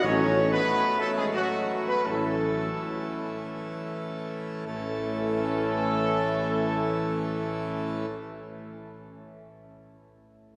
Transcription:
0.03 tuba A1, pipe organ F#3 A3 C#4 A4, trombone section F#3 C#4, french horn section C#4, trumpet section C#5
0.51 french horn section B3, trumpet section B4
0.98 french horn section A3, trumpet section A4
1.17 french horn section G#3, trumpet section G#4
1.33 french horn section F#3, trumpet section F#4
1.86 french horn section B3, trumpet section B4
2.05 tuba A1, pipe organ E3, trombone section E3 C#4, french horn section A3, trumpet section A4
4.66 tuba A1, trombone section E3 C#4, pipe organ E3 A3 C#4 A4, french horn section A3, trumpet section A4

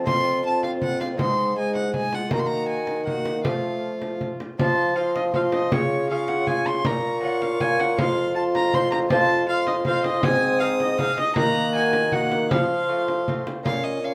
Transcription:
Already playing: lute F2, bassoon F2
0.04 lute C4 F4, trombone C4, viola F4, violin C6, frame drum
0.44 trombone C4, viola F4, violin A5
0.63 violin F5, frame drum
0.82 violin F#5, frame drum
1.01 violin F5, frame drum
1.16 bassoon G#2, lute G#2 G#3 C4 D#4, violin C6, frame drum
1.20 trombone G#3, viola D#4
1.57 trombone G#3, viola D#4, violin G#5
1.75 violin F#5, frame drum
1.94 trombone G#3, viola D#4, violin G#5, frame drum
2.13 viola F4, violin F#5, frame drum
2.29 lute A#3 D#4 F#4, trombone A#3, frame drum
2.33 lute D#3, bassoon D#3, viola F#4, violin A#5
2.40 violin C6
2.47 violin A#5
2.69 violin G#5
2.87 frame drum
3.04 lute A#3 D#4 F#4, trombone A#3, viola F#4, violin F#5, frame drum
3.25 frame drum
3.43 bassoon F3, lute F3 A3 C4 F4, trombone A3, viola F4, violin F5, frame drum
4.02 frame drum
4.21 frame drum
4.40 frame drum
4.59 lute F3, bassoon F3, trombone F4, viola A5, violin C6, frame drum
4.96 lute C4 F4, trombone F4, viola F5, violin C6
5.15 viola D#5, frame drum
5.34 lute C4 F4, trombone F4, viola F5, violin C6, frame drum
5.52 viola D#5, frame drum
5.72 bassoon C#3, lute C#3, trombone F4, viola C#5, violin C#6, frame drum
6.10 lute C#4 F4 G#4, trombone F4, viola F5, violin C#6
6.28 viola F#5, frame drum
6.47 lute C#4 F4 G#4, viola G#5, frame drum
6.66 viola C6, frame drum
6.85 bassoon A#2, trombone F4, viola A#5, violin C#6, frame drum
7.23 lute C#4 F4 A#4, viola F#5
7.42 viola F5, frame drum
7.60 lute C#4 F4 A#4, viola G#5, frame drum
7.80 viola F#5, frame drum
7.98 lute F2 C4 F4 A#4, bassoon F2, trombone F4, viola F5, violin C6, frame drum
8.35 trombone F4, viola A5, violin C6
8.55 viola A#5, frame drum
8.74 lute C4 F4 C5, viola C6, frame drum
8.91 viola A#5, frame drum
9.10 lute C4 F4 C5, trombone F4, viola A5, violin C6, frame drum
9.49 trombone F4, viola F5, violin C6
9.67 viola D#5, frame drum
9.85 lute C4 F4 C5, trombone F4, viola F5, violin C6, frame drum
10.04 viola D#5, frame drum
10.23 bassoon G#2, lute G#2, trombone C4, viola G#5, violin D#6, frame drum
10.60 lute C4 D#4 G#4, viola F5
10.80 viola D#5, frame drum
10.99 lute C4 D#4 G#4, viola F5, frame drum
11.18 viola D#5, frame drum
11.36 lute D#3, bassoon D#3, trombone A#3, viola A#5, violin F#6, frame drum
11.74 lute A#3 D#4 F#4, viola G#5
11.93 frame drum
12.12 trombone A#3, lute A#3 D#4 F#4, viola F#5, violin F#6, frame drum
12.32 frame drum
12.50 bassoon F3, lute F3, trombone F4, viola F5, violin C6, frame drum
12.89 lute A3 C4 F4
13.08 frame drum
13.28 lute A3 C4 F4, frame drum
13.47 frame drum
13.63 bassoon A#2, lute A#2 A#3 C#4 F4, trombone C#4, viola C#5, violin F5, frame drum
13.84 violin D#5
14.03 trombone C#4, viola C#5, violin F5

